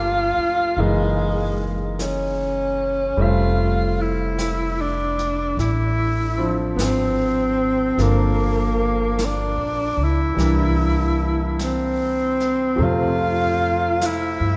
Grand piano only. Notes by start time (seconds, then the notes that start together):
Already playing: F3 A3 A#3 D4
0.78 E3 G#3 A#3 D#4
3.17 G3 A3 C4
3.22 E5
6.37 F3 C4 D4
7.98 F3 A#3 D4 A4
10.35 E3 G3 A#3
10.40 D4
12.75 F3 A3 G4
12.80 C3